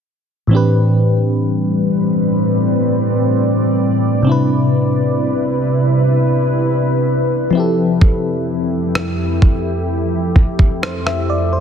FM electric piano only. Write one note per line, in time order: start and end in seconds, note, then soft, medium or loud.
0.47 4.20 A2 medium
0.47 4.21 E3 medium
0.47 4.22 C4 medium
0.53 4.23 D4 medium
0.53 4.24 G4 medium
0.53 4.25 B4 medium
4.22 7.49 C3 medium
4.22 7.50 C4 medium
4.27 7.51 D4 medium
4.27 7.52 E4 medium
4.32 7.53 B4 medium
7.51 10.77 F3 medium
7.51 10.78 C4 medium
7.55 10.79 E4 medium
7.55 10.80 G4 medium
7.60 10.81 A4 medium
10.83 11.05 C5 medium
11.06 11.29 E5 medium
11.30 11.52 D5 medium
11.53 11.60 C5 medium